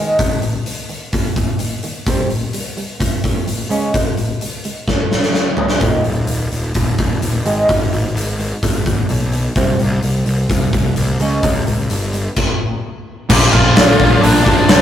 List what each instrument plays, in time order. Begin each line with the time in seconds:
Already playing: steel-string acoustic guitar G#2 D#3 G#3
0.19 steel-string acoustic guitar G#2 D#3, kick, open hi-hat
0.42 steel-string acoustic guitar G#2 D#3, open hi-hat
0.66 steel-string acoustic guitar G#2 D#3, open hi-hat
0.89 steel-string acoustic guitar G#2 D#3, open hi-hat
1.13 steel-string acoustic guitar G#2 D#3, kick, open hi-hat
1.36 steel-string acoustic guitar G#2 D#3, kick, open hi-hat
1.59 steel-string acoustic guitar G#2 D#3, open hi-hat
1.83 steel-string acoustic guitar G#2 D#3, open hi-hat
2.06 steel-string acoustic guitar C3 G3 C4, kick, open hi-hat
2.30 steel-string acoustic guitar C3 G3, open hi-hat
2.53 steel-string acoustic guitar C3 G3, open hi-hat
2.77 steel-string acoustic guitar C3 G3, open hi-hat
3.00 steel-string acoustic guitar C3 G3, kick, open hi-hat
3.24 steel-string acoustic guitar C3 G3, kick, open hi-hat
3.46 steel-string acoustic guitar C3 G3, open hi-hat
3.69 steel-string acoustic guitar C#3 G#3 C#4, open hi-hat
3.94 steel-string acoustic guitar C#3 G#3, kick, open hi-hat
4.17 steel-string acoustic guitar C#3 G#3, open hi-hat
4.41 steel-string acoustic guitar C#3 G#3, open hi-hat
4.64 steel-string acoustic guitar C#3 G#3, open hi-hat
4.88 steel-string acoustic guitar C#3 G#3, kick, snare
5.11 steel-string acoustic guitar C#3 G#3, snare
5.23 snare
5.34 steel-string acoustic guitar C#3 G#3, snare
5.57 steel-string acoustic guitar C#3 G#3, floor tom
5.69 snare
5.80 picked electric bass D#1, steel-string acoustic guitar D#2 A#2 D#3, kick, open hi-hat
6.04 picked electric bass D#1, open hi-hat
6.27 picked electric bass D#1, steel-string acoustic guitar D#2 A#2, open hi-hat
6.52 picked electric bass D#1, steel-string acoustic guitar D#2 A#2, open hi-hat
6.74 picked electric bass D#1, steel-string acoustic guitar D#2 A#2, kick, open hi-hat
6.98 picked electric bass D#1, steel-string acoustic guitar D#2 A#2, kick, open hi-hat
7.21 picked electric bass D#1, steel-string acoustic guitar D#2 A#2, open hi-hat
7.45 picked electric bass G#1, steel-string acoustic guitar G#2 D#3 G#3, open hi-hat
7.69 picked electric bass G#1, steel-string acoustic guitar G#2 D#3, kick, open hi-hat
7.92 picked electric bass G#1, steel-string acoustic guitar G#2 D#3, open hi-hat
8.15 picked electric bass G#1, steel-string acoustic guitar G#2 D#3, open hi-hat
8.39 steel-string acoustic guitar G#2 D#3, open hi-hat
8.62 picked electric bass G#1, steel-string acoustic guitar G#2 D#3, kick, open hi-hat
8.86 picked electric bass G#1, steel-string acoustic guitar G#2 D#3, kick, open hi-hat
9.09 picked electric bass B1, steel-string acoustic guitar G#2 D#3, open hi-hat
9.32 steel-string acoustic guitar G#2 D#3, open hi-hat
9.56 picked electric bass C2, steel-string acoustic guitar C3 G3 C4, kick, open hi-hat
9.79 picked electric bass C2, steel-string acoustic guitar C3 G3, open hi-hat
10.03 picked electric bass C2, steel-string acoustic guitar C3 G3, open hi-hat
10.26 picked electric bass C2, steel-string acoustic guitar C3 G3, open hi-hat
10.49 picked electric bass C2, steel-string acoustic guitar C3 G3, kick, open hi-hat
10.72 picked electric bass C2, steel-string acoustic guitar C3 G3, kick, open hi-hat
10.96 picked electric bass C2, steel-string acoustic guitar C3 G3, open hi-hat
11.20 picked electric bass C#2, steel-string acoustic guitar C#3 G#3 C#4, open hi-hat
11.43 picked electric bass C#2, steel-string acoustic guitar C#3 G#3, kick, open hi-hat
11.66 picked electric bass C#2, steel-string acoustic guitar C#3 G#3, open hi-hat
11.90 picked electric bass G1, steel-string acoustic guitar C#3 G#3, open hi-hat
12.13 steel-string acoustic guitar C#3 G#3, open hi-hat
12.36 kick, crash
13.30 picked electric bass A#1, overdriven electric guitar A#2 F3 A#3 D4 F4, lead electric guitar G4 G5, kick, crash
13.53 picked electric bass A#1, overdriven electric guitar A#3 D4 F4, lead electric guitar F4 F5, kick
13.76 picked electric bass A#1, overdriven electric guitar F3 A#3 D4 F4, snare, open hi-hat
14.00 picked electric bass A#1, kick
14.21 picked electric bass A#1, overdriven electric guitar A#2 F3 A#3, lead electric guitar D4 D5, open hi-hat
14.26 overdriven electric guitar D4 F4
14.45 picked electric bass G#1, overdriven electric guitar D4 F4, lead electric guitar D4 D5, kick
14.49 overdriven electric guitar A#3
14.69 picked electric bass C2, overdriven electric guitar F3 A#3 D4, snare, open hi-hat
14.73 overdriven electric guitar F4